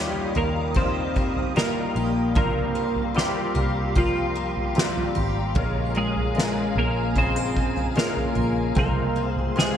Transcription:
Already playing: D#2 A#2 D#3 G3 A#3 D#4 F4 G4 A#4 C#5 F5 A#5 D#6
0.35 D#2 A#3 A#4, floor tom
0.74 G3 C4 D#4 F4 G4 A#4 C5, kick, floor tom
1.16 A#3, kick
1.37 floor tom
1.55 G3 A#3 D#4 F4 A#4, snare
1.95 A#1 G4
2.35 C2 G2 C3 G3 A#3 C4 F4 G4 A#4 F5 C6, kick, floor tom
2.75 A#3
2.96 floor tom
3.14 G3 C4 F4 G4 A#4, snare
3.55 C2 A#3, floor tom
3.95 F3 G3 C4 F4 G4 A#4, kick, floor tom
4.35 A#3
4.57 floor tom
4.75 G3 C4 F4 G4, snare
4.97 floor tom
5.15 G#1 G4, floor tom
5.55 A#1 A#2 G#3 C#4 F4 G#4 A#4 G#5, kick, floor tom
5.95 G#3 C#4 G#4
6.16 floor tom
6.35 G#3 C#4 F4 A#4, snare
6.76 A#1 A#3 A#4, floor tom
7.15 C#3 G#3 C4 F4 G#4 C5, kick, floor tom
7.36 A#4
7.57 kick
7.77 floor tom
7.95 G#3 A#3 C#4 F4 A#4, snare
8.17 floor tom
8.35 A#1 A#4, floor tom
8.75 C2 C3 G#3 A#3 C4 F4 A#4 C5 C6, kick, floor tom
9.16 C4
9.34 G#4, floor tom
9.56 G#3 C4 F4 G4 G#4, snare
9.64 G#4

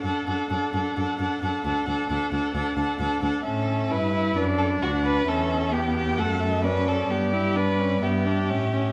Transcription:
0.04 F#2 D4 A4 F#5
0.27 F#2 D4 A4 F#5
0.50 F#2 D4 A4 F#5
0.73 F#2 D4 A4 F#5
0.96 F#2 D4 A4 F#5
1.19 F#2 D4 A4 F#5
1.42 F#2 D4 A4 F#5
1.65 D2 D4 A4 F#5
1.87 D2 D4 A4 F#5
2.10 D2 D4 A4 F#5
2.32 D2 D4 A4 F#5
2.55 D2 D4 A4 F#5
2.76 D2 D4 A4 F#5
2.99 D2 D4 A4 F#5
3.22 D2 D4 A4 F#5
3.45 A2 C#4 A4 E5
3.91 G2 E4 B4
4.14 E4
4.36 F#2 D4 B4 D5
4.58 A4
4.82 D2 F#4 F#5
5.05 B4
5.27 E2 C#4 A4 E5
5.72 B3 G4 G5
5.96 G4
6.17 F#2 A3 A4 F#5
6.40 E5
6.64 C#4 B4 D5
6.88 A4
7.10 G2 B3 G4 D5
7.33 E4
7.56 D4 B4
7.79 C#4
8.02 G2 B3 G4 E5
8.26 D4
8.49 A2 C#4 E5
8.74 C#4

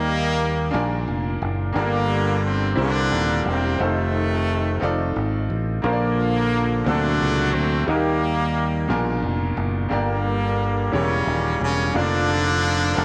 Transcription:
Already playing: D#2 D#3 G3 A#3 D#4 G4 A#4 D#5
0.71 A#1 A#2 D4 F4 A#4 D5 G#5
1.08 F1
1.42 F#1
1.73 G1 G2 A#3 D4 G4 A#4 D5
1.78 D3 G3 A#3
2.46 C4
2.75 C2 C3 C4 E4 G4 A#4 C5
2.80 D3 G3 A#3 D4
3.11 D#1
3.45 E1 C3 C4
3.78 F1 C4 D#4 F4 A4 C5
3.82 C3 D#3 A3
4.80 F1 C4 D#4 F4 A4 D5
5.16 G#1
5.50 A1
5.82 A#1 A#2 A#3 D4 F4 A#4 C5
5.87 D3 F3
5.93 D5
6.84 D2 A#2 C3 D3 C4 D4 F#4 A4
6.89 F#3 A3
7.21 C#2
7.54 D2 C4
7.86 D#2 D#3 G3 A#3 D#4 F#4 A#4
7.90 D#3 G3
7.95 G4
8.88 A#1 A#2 B2 D4 F4 A#4 G#5
9.23 F1
9.57 F#1
9.89 G1 G2 A#3 D4 G4 A#4 D5
9.93 D3 G3 A#3
10.92 E1 C#3 E3 G3 A#3 C#4 E4 G4 A#4 C#5
11.27 D#1
11.61 E1 C#3 C#4
11.93 F1 D3 F3 A#3 D4 F4 A#4 D5
12.95 F1 F3 C4 F4 A4 A#4

